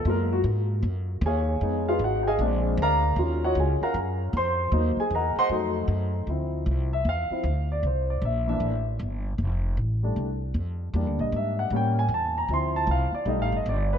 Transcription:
X:1
M:4/4
L:1/8
Q:"Swing" 1/4=154
K:Fphr
V:1 name="Grand piano"
B G z4 [Adfa]2- | [Adfa] [FA_cf] [Gg] [Aef=ga] z2 [B=dfb]2- | [B=dfb] [G_deg] [Aa] [Bfgb] z2 [cc']2- | [cc'] [Aa] [Begb] [cegc'] z4 |
[K:Dm] z3 e f3 d | c d e e2 z3 | z8 | z _e =e ^f g ^g a b |
c' a f d (3^d f d =d =B |]
V:2 name="Grand piano"
[A,B,F] z6 z | [A,_CE]4 [A,=C=D]3 z | [DFG]8 | [G,B,E] z3 [G,=A,E]4 |
[K:Dm] [F,CE]3 z2 [F,CE] z2 | z3 [E,B,D] z4 | z3 [G,A,D] z4 | [G,B,D]4 [G,B,^C] z3 |
[F,CE]3 z [G,A,^D] z3 |]
V:3 name="Upright bass" clef=bass
G,,2 A,,2 G,,2 E,,2 | F,,2 A,,,2 B,,,2 =D,,2 | E,,2 D,, z G,,2 F,,2 | E,, z =E,, z F,,2 G,,2 |
[K:Dm] D,,2 C,,2 E,, z D,,2 | C,,2 B,,,2 A,,,2 G,,,2 | F,,,2 A,,,2 C,,2 F,,2 | (3E,, D,, B,,, ^G,,2 A,,2 E,,2 |
D,,2 C,, z (3=B,,, A,,, G,,, G,,,2 |]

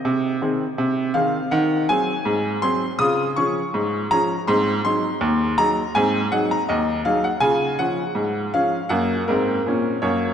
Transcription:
X:1
M:2/4
L:1/16
Q:1/4=81
K:Ab
V:1 name="Upright piano"
e4 z2 f2 | [K:Db] g2 a4 c'2 | e'2 d'4 b2 | c'2 c'4 b2 |
a2 g b e2 f g | a2 g4 f2 | g2 B4 d2 |]
V:2 name="Upright piano"
C,2 [E,CA]2 C,2 [E,CA]2 | [K:Db] E,2 [G,CA]2 A,,2 [G,CA]2 | [D,F]2 [F,DA]2 A,,2 [F,DA]2 | [A,,C]2 [G,EA]2 E,,2 [G,EA]2 |
[A,,C]2 [G,EA]2 E,,2 [G,EA]2 | [D,F]2 [F,DA]2 A,,2 [F,DA]2 | [G,,B,]2 [A,,C]2 [B,,D]2 [G,,B,]2 |]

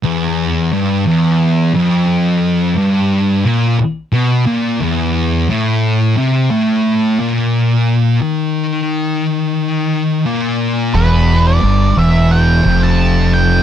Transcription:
X:1
M:4/4
L:1/16
Q:1/4=88
K:Ador
V:1 name="Lead electric guitar"
z16 | z16 | z16 | z16 |
B3 d3 e2 g3 a3 g2 |]
V:2 name="Distorted electric guitar" clef=bass
E,,4 G,,2 E,,4 =F,,6 | G,,4 ^A,,2 z2 B,,2 A,,2 E,,4 | A,,4 C,2 A,,4 ^A,,6 | _E,12 ^A,,4 |
E,,4 G,,2 E,,4 =F,,6 |]
V:3 name="Distorted electric guitar" clef=bass
E,,4 G,,2 E,,4 =F,,6 | G,,4 ^A,,2 z2 B,,2 A,,2 E,,4 | A,,4 C,2 A,,4 ^A,,6 | _E,12 ^A,,4 |
E,,4 G,,2 E,,4 =F,,6 |]
V:4 name="Fingered electric bass" clef=bass
z16 | z16 | z16 | z16 |
E,,,4 G,,,2 E,,,4 =F,,,6 |]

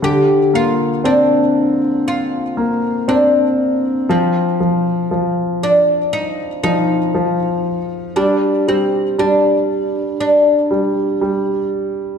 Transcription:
X:1
M:4/4
L:1/8
Q:1/4=59
K:Bb
V:1 name="Oud"
G F D2 F2 D2 | C2 z D E E3 | D C D2 D3 z |]
V:2 name="Grand piano" clef=bass
D, B, C3 B, C2 | F, F, F,3 F, F,2 | G, G, G,3 G, G,2 |]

